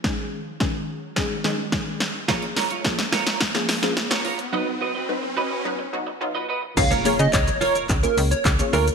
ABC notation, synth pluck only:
X:1
M:4/4
L:1/16
Q:1/4=107
K:Db
V:1 name="Synth pluck"
[E,A,DA]3 z [E,A,DA]3 z [E,A,DA] z [E,A,DA] z [E,A,DA]3 z | [F,B,DA]3 z [F,B,DA]3 z2 [F,B,DA] z [F,B,DA]3 z2 | [G,_CE_c]3 z [G,CEc]3 z [G,CEc] z [G,CEG] z [G,CEF]3 z | [B,DFAd] z [B,DFAd]4- [B,DFAd] z2 [B,DFAd]3 z [B,DFAd]2 z |]